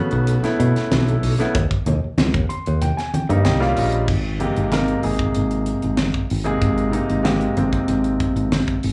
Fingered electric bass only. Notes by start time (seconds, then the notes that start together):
0.13 B1
0.45 muted fingered electric bass stroke
0.60 B2
0.76 muted fingered electric bass stroke
0.92 B1
1.23 B1
1.55 D#2
1.71 muted fingered electric bass stroke
1.87 D#2
2.04 muted fingered electric bass stroke
2.20 C#2
2.34 D#2
2.51 muted fingered electric bass stroke
2.67 D#2
3.15 muted fingered electric bass stroke
3.29 G2
3.46 C2
3.78 A#1
4.08 G#1
4.57 G#1
5.04 G#1
5.36 G#1
5.84 G#1
6.31 G#1
6.62 G#1
7.10 G#1
7.57 G#1
7.88 G#1
8.36 G#1
8.84 G#1